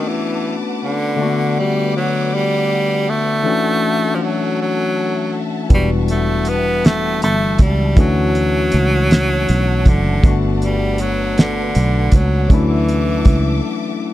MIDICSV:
0, 0, Header, 1, 6, 480
1, 0, Start_track
1, 0, Tempo, 754717
1, 750, Time_signature, 6, 3, 24, 8
1, 8990, End_track
2, 0, Start_track
2, 0, Title_t, "String section"
2, 0, Program_c, 0, 48
2, 0, Note_on_c, 0, 71, 76
2, 0, Note_on_c, 0, 78, 82
2, 0, Note_on_c, 0, 81, 76
2, 0, Note_on_c, 0, 86, 84
2, 736, Note_off_c, 0, 81, 0
2, 737, Note_off_c, 0, 86, 0
2, 746, Note_on_c, 0, 86, 87
2, 747, Note_on_c, 0, 74, 76
2, 2164, Note_off_c, 0, 71, 0
2, 2173, Note_off_c, 0, 86, 0
2, 2174, Note_off_c, 0, 74, 0
2, 2185, Note_on_c, 0, 69, 85
2, 2187, Note_on_c, 0, 76, 77
2, 2189, Note_on_c, 0, 81, 90
2, 3605, Note_off_c, 0, 78, 0
2, 3613, Note_off_c, 0, 69, 0
2, 3627, Note_on_c, 0, 78, 73
2, 3628, Note_on_c, 0, 55, 81
2, 5054, Note_off_c, 0, 55, 0
2, 5054, Note_off_c, 0, 78, 0
2, 5066, Note_on_c, 0, 73, 80
2, 5069, Note_on_c, 0, 78, 73
2, 6483, Note_off_c, 0, 76, 0
2, 6494, Note_off_c, 0, 73, 0
2, 6508, Note_on_c, 0, 74, 79
2, 6509, Note_on_c, 0, 71, 81
2, 7924, Note_off_c, 0, 81, 0
2, 7934, Note_off_c, 0, 74, 0
2, 7935, Note_off_c, 0, 71, 0
2, 7946, Note_on_c, 0, 76, 80
2, 7947, Note_on_c, 0, 86, 97
2, 7948, Note_on_c, 0, 69, 79
2, 8990, Note_off_c, 0, 69, 0
2, 8990, Note_off_c, 0, 76, 0
2, 8990, Note_off_c, 0, 78, 0
2, 8990, Note_off_c, 0, 86, 0
2, 8990, End_track
3, 0, Start_track
3, 0, Title_t, "Tine electric piano"
3, 0, Program_c, 1, 4
3, 0, Control_c, 1, 64, 127
3, 0, Note_on_c, 1, 57, 70
3, 0, Note_on_c, 1, 59, 61
3, 0, Note_on_c, 1, 61, 62
3, 0, Note_on_c, 1, 62, 62
3, 0, Note_on_c, 1, 66, 74
3, 720, Note_off_c, 1, 57, 0
3, 724, Note_off_c, 1, 59, 0
3, 729, Note_off_c, 1, 61, 0
3, 734, Note_off_c, 1, 62, 0
3, 741, Note_on_c, 1, 50, 75
3, 748, Note_on_c, 1, 57, 60
3, 758, Note_off_c, 1, 66, 0
3, 758, Note_on_c, 1, 58, 50
3, 759, Control_c, 1, 64, 0
3, 769, Note_on_c, 1, 62, 66
3, 776, Note_on_c, 1, 66, 80
3, 795, Note_off_c, 1, 58, 0
3, 800, Note_on_c, 1, 59, 64
3, 877, Control_c, 1, 64, 127
3, 2160, Note_off_c, 1, 50, 0
3, 2163, Note_off_c, 1, 57, 0
3, 2174, Note_off_c, 1, 62, 0
3, 2177, Note_off_c, 1, 66, 0
3, 2183, Note_on_c, 1, 52, 66
3, 2189, Note_off_c, 1, 59, 0
3, 2192, Note_on_c, 1, 57, 66
3, 2197, Control_c, 1, 64, 0
3, 2200, Note_on_c, 1, 61, 66
3, 2208, Note_on_c, 1, 62, 68
3, 2217, Note_on_c, 1, 66, 75
3, 2315, Control_c, 1, 64, 127
3, 3601, Note_off_c, 1, 52, 0
3, 3605, Note_off_c, 1, 57, 0
3, 3609, Note_off_c, 1, 61, 0
3, 3613, Note_off_c, 1, 62, 0
3, 3618, Note_off_c, 1, 66, 0
3, 3621, Note_on_c, 1, 52, 66
3, 3629, Note_on_c, 1, 55, 64
3, 3637, Note_on_c, 1, 59, 67
3, 3638, Control_c, 1, 64, 0
3, 3647, Note_on_c, 1, 62, 58
3, 3654, Note_on_c, 1, 66, 72
3, 3746, Control_c, 1, 64, 127
3, 5040, Note_off_c, 1, 52, 0
3, 5044, Note_off_c, 1, 55, 0
3, 5048, Note_off_c, 1, 59, 0
3, 5053, Note_off_c, 1, 62, 0
3, 5056, Note_off_c, 1, 66, 0
3, 5061, Note_on_c, 1, 52, 65
3, 5071, Note_on_c, 1, 57, 66
3, 5079, Control_c, 1, 64, 0
3, 5080, Note_on_c, 1, 61, 63
3, 5087, Note_on_c, 1, 62, 57
3, 5096, Note_on_c, 1, 66, 80
3, 5183, Control_c, 1, 64, 127
3, 6480, Note_off_c, 1, 52, 0
3, 6485, Note_off_c, 1, 57, 0
3, 6489, Note_off_c, 1, 61, 0
3, 6493, Note_off_c, 1, 62, 0
3, 6498, Note_off_c, 1, 66, 0
3, 6511, Note_on_c, 1, 57, 63
3, 6518, Control_c, 1, 64, 0
3, 6521, Note_on_c, 1, 59, 64
3, 6529, Note_on_c, 1, 62, 60
3, 6539, Note_on_c, 1, 66, 74
3, 6641, Control_c, 1, 64, 127
3, 7925, Note_off_c, 1, 57, 0
3, 7930, Note_off_c, 1, 59, 0
3, 7934, Note_off_c, 1, 62, 0
3, 7938, Note_on_c, 1, 54, 68
3, 7939, Note_off_c, 1, 66, 0
3, 7947, Note_on_c, 1, 57, 67
3, 7957, Note_on_c, 1, 61, 61
3, 7958, Control_c, 1, 64, 0
3, 7965, Note_on_c, 1, 62, 63
3, 7974, Note_on_c, 1, 64, 77
3, 8069, Control_c, 1, 64, 127
3, 8990, Note_off_c, 1, 54, 0
3, 8990, Note_off_c, 1, 57, 0
3, 8990, Note_off_c, 1, 61, 0
3, 8990, Note_off_c, 1, 62, 0
3, 8990, Note_off_c, 1, 64, 0
3, 8990, End_track
4, 0, Start_track
4, 0, Title_t, "Tenor saxophone"
4, 0, Program_c, 2, 66
4, 52, Note_on_c, 2, 52, 84
4, 349, Note_off_c, 2, 52, 0
4, 532, Note_on_c, 2, 50, 92
4, 1011, Note_on_c, 2, 55, 100
4, 1020, Note_off_c, 2, 50, 0
4, 1240, Note_off_c, 2, 55, 0
4, 1250, Note_on_c, 2, 54, 99
4, 1493, Note_on_c, 2, 55, 108
4, 1502, Note_off_c, 2, 54, 0
4, 1968, Note_on_c, 2, 57, 113
4, 1978, Note_off_c, 2, 55, 0
4, 2640, Note_on_c, 2, 53, 68
4, 2649, Note_off_c, 2, 57, 0
4, 2691, Note_on_c, 2, 54, 117
4, 2700, Note_off_c, 2, 53, 0
4, 2920, Note_off_c, 2, 54, 0
4, 2935, Note_on_c, 2, 54, 101
4, 3437, Note_off_c, 2, 54, 0
4, 3651, Note_on_c, 2, 55, 100
4, 3753, Note_off_c, 2, 55, 0
4, 3885, Note_on_c, 2, 57, 103
4, 4123, Note_on_c, 2, 59, 120
4, 4132, Note_off_c, 2, 57, 0
4, 4361, Note_on_c, 2, 57, 116
4, 4371, Note_off_c, 2, 59, 0
4, 4595, Note_off_c, 2, 57, 0
4, 4603, Note_on_c, 2, 57, 112
4, 4845, Note_on_c, 2, 55, 95
4, 4855, Note_off_c, 2, 57, 0
4, 5086, Note_on_c, 2, 54, 117
4, 5095, Note_off_c, 2, 55, 0
4, 6287, Note_on_c, 2, 50, 91
4, 6297, Note_off_c, 2, 54, 0
4, 6587, Note_off_c, 2, 50, 0
4, 6767, Note_on_c, 2, 55, 97
4, 7004, Note_on_c, 2, 54, 116
4, 7013, Note_off_c, 2, 55, 0
4, 7247, Note_on_c, 2, 50, 93
4, 7257, Note_off_c, 2, 54, 0
4, 7727, Note_on_c, 2, 54, 96
4, 7736, Note_off_c, 2, 50, 0
4, 7958, Note_off_c, 2, 54, 0
4, 7968, Note_on_c, 2, 52, 91
4, 8893, Note_off_c, 2, 52, 0
4, 8990, End_track
5, 0, Start_track
5, 0, Title_t, "Fingered electric bass"
5, 0, Program_c, 3, 33
5, 3633, Note_on_c, 3, 28, 102
5, 4599, Note_off_c, 3, 28, 0
5, 4599, Note_on_c, 3, 31, 99
5, 4811, Note_off_c, 3, 31, 0
5, 4835, Note_on_c, 3, 37, 90
5, 5048, Note_off_c, 3, 37, 0
5, 5072, Note_on_c, 3, 38, 100
5, 5525, Note_off_c, 3, 38, 0
5, 5559, Note_on_c, 3, 37, 94
5, 6009, Note_off_c, 3, 37, 0
5, 6041, Note_on_c, 3, 35, 113
5, 6276, Note_on_c, 3, 30, 100
5, 6286, Note_off_c, 3, 35, 0
5, 6489, Note_off_c, 3, 30, 0
5, 6516, Note_on_c, 3, 31, 108
5, 7447, Note_off_c, 3, 31, 0
5, 7481, Note_on_c, 3, 35, 95
5, 7692, Note_off_c, 3, 35, 0
5, 7717, Note_on_c, 3, 37, 104
5, 7930, Note_off_c, 3, 37, 0
5, 7956, Note_on_c, 3, 38, 99
5, 8407, Note_off_c, 3, 38, 0
5, 8435, Note_on_c, 3, 37, 85
5, 8648, Note_off_c, 3, 37, 0
5, 8990, End_track
6, 0, Start_track
6, 0, Title_t, "Drums"
6, 3626, Note_on_c, 9, 42, 61
6, 3628, Note_on_c, 9, 36, 107
6, 3690, Note_off_c, 9, 42, 0
6, 3692, Note_off_c, 9, 36, 0
6, 3868, Note_on_c, 9, 42, 54
6, 3932, Note_off_c, 9, 42, 0
6, 4102, Note_on_c, 9, 42, 68
6, 4165, Note_off_c, 9, 42, 0
6, 4354, Note_on_c, 9, 42, 76
6, 4362, Note_on_c, 9, 38, 127
6, 4418, Note_off_c, 9, 42, 0
6, 4426, Note_off_c, 9, 38, 0
6, 4592, Note_on_c, 9, 42, 62
6, 4655, Note_off_c, 9, 42, 0
6, 4824, Note_on_c, 9, 42, 77
6, 4829, Note_on_c, 9, 36, 88
6, 4888, Note_off_c, 9, 42, 0
6, 4893, Note_off_c, 9, 36, 0
6, 5067, Note_on_c, 9, 42, 66
6, 5068, Note_on_c, 9, 36, 119
6, 5130, Note_off_c, 9, 42, 0
6, 5131, Note_off_c, 9, 36, 0
6, 5310, Note_on_c, 9, 42, 53
6, 5374, Note_off_c, 9, 42, 0
6, 5544, Note_on_c, 9, 42, 61
6, 5608, Note_off_c, 9, 42, 0
6, 5793, Note_on_c, 9, 42, 85
6, 5802, Note_on_c, 9, 38, 127
6, 5857, Note_off_c, 9, 42, 0
6, 5865, Note_off_c, 9, 38, 0
6, 6033, Note_on_c, 9, 42, 63
6, 6097, Note_off_c, 9, 42, 0
6, 6268, Note_on_c, 9, 42, 70
6, 6271, Note_on_c, 9, 36, 97
6, 6331, Note_off_c, 9, 42, 0
6, 6334, Note_off_c, 9, 36, 0
6, 6510, Note_on_c, 9, 36, 123
6, 6511, Note_on_c, 9, 42, 67
6, 6573, Note_off_c, 9, 36, 0
6, 6574, Note_off_c, 9, 42, 0
6, 6753, Note_on_c, 9, 42, 52
6, 6817, Note_off_c, 9, 42, 0
6, 6985, Note_on_c, 9, 42, 64
6, 7048, Note_off_c, 9, 42, 0
6, 7236, Note_on_c, 9, 42, 83
6, 7244, Note_on_c, 9, 38, 119
6, 7299, Note_off_c, 9, 42, 0
6, 7308, Note_off_c, 9, 38, 0
6, 7473, Note_on_c, 9, 42, 64
6, 7536, Note_off_c, 9, 42, 0
6, 7706, Note_on_c, 9, 42, 81
6, 7711, Note_on_c, 9, 36, 85
6, 7770, Note_off_c, 9, 42, 0
6, 7774, Note_off_c, 9, 36, 0
6, 7950, Note_on_c, 9, 36, 103
6, 7950, Note_on_c, 9, 42, 70
6, 8013, Note_off_c, 9, 36, 0
6, 8014, Note_off_c, 9, 42, 0
6, 8195, Note_on_c, 9, 42, 56
6, 8259, Note_off_c, 9, 42, 0
6, 8426, Note_on_c, 9, 42, 72
6, 8431, Note_on_c, 9, 36, 91
6, 8490, Note_off_c, 9, 42, 0
6, 8494, Note_off_c, 9, 36, 0
6, 8990, End_track
0, 0, End_of_file